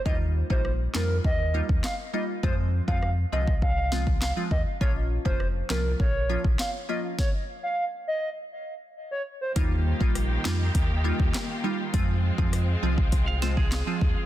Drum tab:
HH |----------------|----------------|----------------|----------------|
CP |------x-----x---|------------x---|------x-----x---|----------------|
SD |----r-o-----o---|----r-----o-o---|----r-o-----o---|o---------------|
BD |o--o----o--o----|o--o---oo--o--o-|o--o----o--o----|o---------------|

HH |x---x---x---x---|x---x---x---x---|
CP |------x-----x---|------------x---|
SD |----r-o-----o---|----r-----o-o---|
BD |o--o----o--o----|o--o---oo--o--o-|